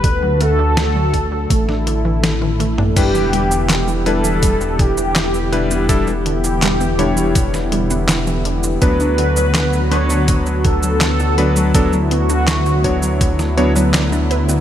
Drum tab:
CC |----------------|x---------------|----------------|----------------|
HH |x-x-x-x-x-x-x-x-|x-x-x-x-x-x-x-x-|x-x-x-x-x-x-x-x-|x-x-x-x-x-x-x-x-|
SH |----------------|xx-xxx-xxx-xxx-x|xx-xxx-xxx-xxx-x|xx-xxx-xxx-xxx-x|
CP |----------------|----x-------x---|----x-------x---|----x-------x---|
SD |----o----o--o---|----o-------o---|----o----o--o---|----o-------o---|
T1 |------------oo--|----------------|----------------|----------------|
T2 |---------------o|----------------|----------------|----------------|
BD |o-----o-o-------|o-------o-o-----|o-------o-------|o-------o-o-----|

CC |----------------|
HH |x-x-x-x-x-x-x-x-|
SH |xx-xxx-xxx-xxx-x|
CP |----x-------x---|
SD |----o----o--o---|
T1 |----------------|
T2 |----------------|
BD |o-----o-o-------|